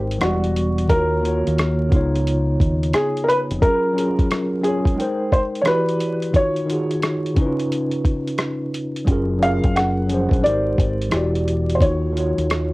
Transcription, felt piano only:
0.21 F#4
0.90 A#4
2.94 G#4
3.24 A#4
3.28 B4
3.62 A#4
4.63 G#4
5.33 C5
5.61 C#5
5.67 B4
6.36 C#5
9.42 F5
9.76 F#5
10.44 D5
11.75 C5
11.82 C#5

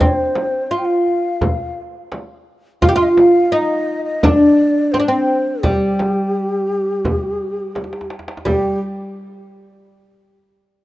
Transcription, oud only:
0.00 C4
0.71 F4
2.82 F4
2.89 G4
2.96 F4
3.52 D#4
4.24 D4
4.94 C4
5.00 D4
5.08 C4
5.63 G3
8.45 G3

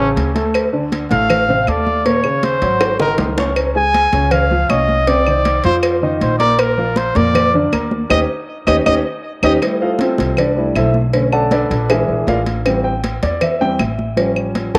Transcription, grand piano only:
Already playing: C#3 C#4 C#5
0.35 A3 A4 A5
0.73 D3 D4 D5
1.11 A2 A3 A4
1.49 C3 C4 C5
1.69 A3 A4 A5
2.05 A#2 A#3 A#4
2.24 C#3 C#4 C#5
2.62 F#3 F#4 F#5
3.00 D#3 D#4 D#5
3.38 C#4 C#5 C#6
3.75 G#3 G#4 G#5
4.13 C#3 C#4 C#5
4.51 F3 F4 F5
4.70 C#4 C#5 C#6
5.08 C3 C4 C5
5.27 D#3 D#4 C5
5.65 F3 F4 F5
6.03 D#3 D#4 D#5
6.40 A#3 A#4 A#5
6.78 F3 F4 F5
7.16 A#2 A#3 A#4
7.55 D3 D4 D5
7.72 A#3 A#4 A#5
8.10 C#4 D#4 G4
8.67 C#4 D#4 G4
8.86 C#4 D#4 G4
9.43 C#4 D#4 G4
9.62 G3 A3 E4
9.82 F4 A4 C5 F5
10.00 C4 F4 A4 C5
10.39 D4 D5
10.56 G3 A3 E4
10.76 E4 A4 C5 E5
11.13 D3 A3 C#4
11.33 A4 D5 F#5 A5
11.52 D4 A4 B4 D5
11.90 E3 G#3 D4 E4 G#4 A#4 E5
12.28 F4 A#4 D5 F5
12.66 E3 G3 C4
12.84 G5
13.23 D5
13.43 E5
13.61 E3 G3 C4 G5
13.80 E5
14.17 F3 G3 C#4
14.75 A5

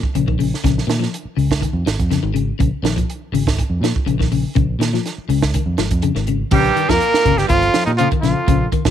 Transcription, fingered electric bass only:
0.15 A#1
0.64 A#1
0.87 A#2
1.25 muted fingered electric bass stroke
1.37 C#2
1.73 F2
1.86 G#1
1.99 F2
2.23 G#1
2.59 A#1
2.83 A#1
3.32 G#1
3.70 F2
3.81 A#2
4.06 A#1
4.55 A#1
4.79 A#2
5.18 muted fingered electric bass stroke
5.29 C#2
5.66 F2
5.78 G#1
5.91 F2
6.15 G#1
6.51 A#1
6.89 F2
7.14 muted fingered electric bass stroke
7.25 G1
7.49 G1
7.87 A#2
8.23 A#1
8.48 A#1
8.85 A#1

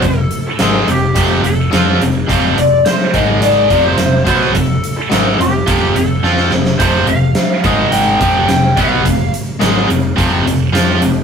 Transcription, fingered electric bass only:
0.03 F1
0.59 G#1
0.87 F1
1.16 F1
1.44 F1
1.73 F2
2.01 F1
2.29 F1
2.57 F1
3.14 G#1
3.70 F1
3.98 F1
4.27 B1
4.55 F1
5.11 G#1
5.39 F1
5.68 F1
5.96 F1
6.23 F2
6.51 F1
6.80 F1
7.07 F1
7.64 G#1
8.21 F1
8.49 F1
8.77 B1
9.05 F1
9.61 G#1
9.89 F1
10.18 F1
10.45 F1
10.73 F2
11.01 F1

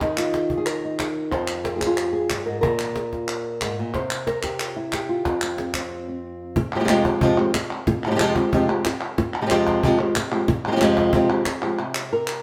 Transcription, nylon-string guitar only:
0.01 D#3 D#4
0.18 F4
0.33 G4
0.57 G#4
0.66 A#4
0.85 D#4
1.31 F2 C5
1.64 A#4
1.76 G4 G#4
1.80 G#4
1.86 F4
1.97 G4
2.13 G#4
2.31 G2
2.46 G#2 A#4
2.61 A#2 A#4
3.13 F4
3.63 G#2
3.79 A#2
3.94 C3 C5
4.27 A#4
4.44 G4
4.60 F4
4.76 E4
4.94 G4
5.09 F4
5.26 F2 C4
5.43 C4
5.60 C4
5.75 C4
6.09 C4
6.57 muted nylon-string guitar stroke
6.75 C3 F3 G#3 C4 G4
6.80 C3 F3 G#3 C4 G4
6.84 C3 F3 G#3 C4 G4
6.89 F2 C3 F3 G#3 C4 G4
7.05 F3 G#3 C4 G4
7.21 F2 C3 F3 G#3 C4 G4
7.38 F3 G#3 C4 G4
7.54 muted nylon-string guitar stroke
7.88 muted nylon-string guitar stroke
8.06 C3 F3 G#3 C4 G4
8.11 C3 F3 G#3 C4 G4
8.15 C3 F3 G#3 C4 G4
8.20 F2 C3 F3 G#3 C4 G4
8.36 F3 G#3 C4 G4
8.52 F2 C3 F3 G#3 C4 G4
8.69 F3 G#3 C4 G4
8.86 muted nylon-string guitar stroke
9.18 muted nylon-string guitar stroke
9.42 C3 F3 G#3 C4 G4
9.46 C3 F3 G#3 C4 G4
9.50 F2 C3 F3 G#3 C4 G4
9.83 F2 C3 F3 G#3 C4 G4
9.99 F3 G#3 C4 G4
10.16 muted nylon-string guitar stroke
10.32 F3 G#3 C4 G4
10.48 muted nylon-string guitar stroke
10.67 C3 F3 G#3 C4 G4
10.71 C3 F3 G#3 C4 G4
10.76 C3 F3 G#3 C4 G4
10.81 F2 C3 F3 G#3 C4 G4
11.13 F2 C3 F3 G#3 C4 G4
11.30 F3 G#3 C4 G4
11.46 muted nylon-string guitar stroke
11.62 F3 G#3 C4 G4
11.79 C3
12.13 A#4

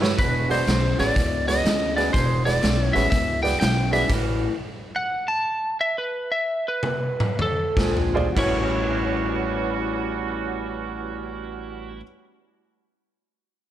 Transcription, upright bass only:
Already playing: G2
0.19 E1
0.67 B1
0.99 A1
1.16 C#2
1.65 D2
2.14 E1
2.63 B1
2.96 A1
3.12 C#2
3.61 B1
4.09 A1
7.77 A#1
8.37 A1

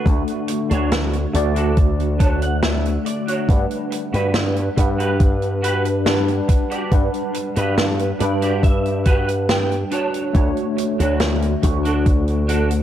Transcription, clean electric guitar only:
0.48 muted clean electric guitar stroke
0.70 D4 F#4 C#5
1.34 muted clean electric guitar stroke
1.56 D4 F#4 A4
2.19 D4 F#4 C#5 A5
2.42 F#5
2.63 E5
3.05 D5, muted clean electric guitar stroke
3.27 D4 F#4 C#5
3.91 muted clean electric guitar stroke
4.13 F#4 G4 B4
4.76 muted clean electric guitar stroke
4.98 F#4 G4 B4
5.62 F#4 G4 B4
6.48 muted clean electric guitar stroke
6.70 F#4 G4 D5
7.34 muted clean electric guitar stroke
7.56 F#4 G4 B4
8.19 D5, muted clean electric guitar stroke
8.42 F#4 G4 D5
8.63 E5
9.05 F#4 G4 B4 F#5
9.49 G5
9.91 D4 F#4 C#5 A5
10.77 muted clean electric guitar stroke
10.99 D4 F#4 C#5
11.63 muted clean electric guitar stroke
11.85 D4 F#4 A4
12.48 D4 F#4 A4

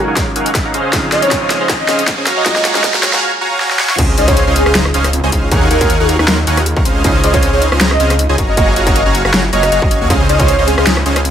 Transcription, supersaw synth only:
0.08 D#4 A#4 C#5 F5 F#5 G#5
0.17 D#4 A#4 C#5 F5 F#5 C6
0.36 D#4 A#4 C#5 F5 F#5 G#5
0.65 D#4 A#4 C#5 F5 F#5 A#5
0.74 C#4 G#4 C5 D#5 F5
0.93 C#4 G#4 C5 D#5 F5
1.12 C#4 G#4 C5 D#5 F5
1.41 C#4 G#4 C5 D#5 F5
1.60 C#4 G#4 C5 D#5 F5
1.69 C#4 G#4 C5 D#5 A#5
1.88 C#4 G#4 C5 D#5 F5
2.18 C#4 G#4 C5 D#5 G#5
2.27 F#4 C#5 F5 G#5 A#5
2.45 F#4 C#5 F5 G#5 A#5
2.65 F#4 C#5 F5 G#5 A#5
2.94 F#4 C#5 F5 G#5 A#5
3.13 F#4 C#5 F5 G#5 A#5
3.22 F#4 C#5 F5 G#5 A#5
3.41 F#4 C#5 F5 G#5 A#5
3.60 F#4 C#5 F5 G#5 A#5
3.71 F#4 C#5 F5 G#5 A#5
3.79 F#4 C#5 F5 G#5 C#6
3.90 F#4 C#5 F5 G#5 C#6
3.99 C#4 G#4 C5 D#5 F5
4.18 C#4 G#4 C5 D#5 F5
4.47 C#4 G#4 C5 D#5 F5
4.66 C#4 G#4 C5 D#5 F5
4.75 C#4 G#4 C5 D#5 A#5
4.94 C#4 G#4 C5 D#5 F5
5.23 C#4 G#4 C5 D#5 G#5
5.32 C#4 G#4 C5 D#5 F5
5.51 D#4 A#4 C#5 F5 F#5 G#5
5.71 D#4 A#4 C#5 F5 F#5 G#5
6.00 D#4 A#4 C#5 F5 F#5 G#5
6.19 D#4 A#4 C#5 F5 F#5 G#5
6.28 D#4 A#4 C#5 F5 F#5 C6
6.47 D#4 A#4 C#5 F5 F#5 G#5
6.76 D#4 A#4 C#5 F5 F#5 A#5
6.85 C#4 G#4 C5 D#5 F5
7.05 C#4 G#4 C5 D#5 F5
7.24 C#4 G#4 C5 D#5 F5
7.53 C#4 G#4 C5 D#5 F5
7.72 C#4 G#4 C5 D#5 F5
7.81 C#4 G#4 C5 D#5 A#5
8.00 C#4 G#4 C5 D#5 F5
8.29 C#4 G#4 C5 D#5 G#5
8.38 F#4 C#5 F5 G#5 A#5
8.57 F#4 C#5 F5 G#5 A#5
8.76 F#4 C#5 F5 G#5 A#5
9.06 F#4 C#5 F5 G#5 A#5
9.25 F#4 C#5 F5 G#5 A#5
9.33 F#4 C#5 F5 G#5 A#5
9.53 F#4 C#5 F5 G#5 A#5
9.72 F#4 C#5 F5 G#5 A#5
9.82 F#4 C#5 F5 G#5 A#5
9.91 F#4 C#5 F5 G#5 C#6
10.01 F#4 C#5 F5 G#5 C#6
10.10 C#4 G#4 C5 D#5 F5
10.29 C#4 G#4 C5 D#5 F5
10.58 C#4 G#4 C5 D#5 F5
10.78 C#4 G#4 C5 D#5 F5
10.86 C#4 G#4 C5 D#5 A#5
11.06 C#4 G#4 C5 D#5 F5

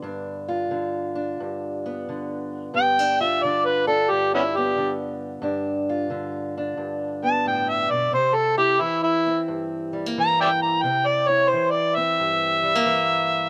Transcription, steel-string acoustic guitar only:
Already playing: D3 B3
0.02 G2 D4
0.48 F4
0.71 D3
1.15 D4
1.40 G2
1.86 B3
2.09 D3
2.74 G2 B3
2.99 D4
3.21 F4
3.44 D3
3.87 D4
4.11 G2
4.57 B3
4.78 D3
5.42 G2 D4
5.89 F4
6.10 D3
6.58 D4
6.77 G2
7.23 B3
7.46 A2
7.91 B2
8.13 C3 C4
8.58 E4
8.80 E3
9.27 C4
9.48 G2
9.93 G3
10.06 A#3
10.18 E3
10.83 C3 C4
11.28 E4
11.53 E3
11.97 C4
12.19 G2
12.63 G3
12.75 A#3
12.85 E3

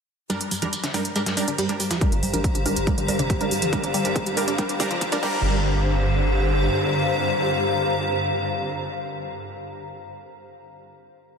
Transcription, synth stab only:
0.30 G3 D4 A#4
0.62 G3 D4 A#4
0.94 G3 D4 A#4
1.16 G3 D4 A#4
1.37 G3 D4 A#4
1.69 G3 D4 A#4
2.01 G3 D4 A#4
2.33 G3 D4 A#4
2.66 G3 D4 A#4
2.87 G3 D4 A#4
3.08 G3 D4 A#4
3.41 G3 D4 A#4
3.73 G3 D4 A#4
4.05 G3 D4 A#4
4.37 G3 D4 A#4
4.58 G3 D4 A#4
4.80 G3 D4 A#4
5.12 G3 D4 A#4
5.23 G3 D4 A#4

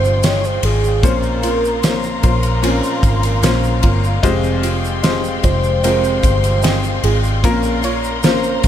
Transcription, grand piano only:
Already playing: G#3 F4 G4 C5
0.23 G#3 F4 D#5 G5
1.03 A#2 A#3 C#4 F4 C5
1.83 A#3 C#4 F4 C5
2.23 A#3 C#4 F4 C5
2.62 A#3 C#4 F4 C5
3.43 A#3 C#4 F4 C5
4.23 G#3 F4 G4 C5
5.03 G#3 F4 G4 C5
5.43 G#3 F4 G4 C5
5.83 G#3 F4 G4 A#4
6.63 G#3 F4 D#5 G5
7.44 A#2 A#3 C#4 F4 A#4
8.23 A#3 C#4 F4 C5
8.63 A#3 C#4 F4 C5

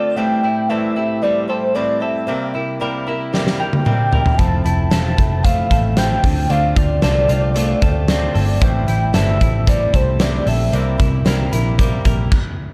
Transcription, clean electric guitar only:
Already playing: D3 A3 C4 F4 A4
0.18 A2
0.44 E4
0.70 A4
0.97 E4
1.23 G3
1.50 A4
1.76 C4
2.02 A4
2.29 C3
2.55 E4
2.81 A#4
3.08 E4
3.33 G3
3.60 A#4
3.87 C4
4.13 A#4
4.40 F3
4.65 E4
4.92 A4
5.44 A3
5.71 A4
5.97 C4
6.23 D3
6.50 D3
6.77 F4
7.03 A4
7.30 F4
7.56 A3
7.82 A4
8.09 C4
8.35 A4
8.62 A2
8.88 E4
9.14 A4
9.41 E4
9.68 G3
9.94 A4
10.21 C4
10.47 A4
10.74 C3
11.00 E4
11.27 A#4
11.53 E4
11.79 G3
12.06 A#4

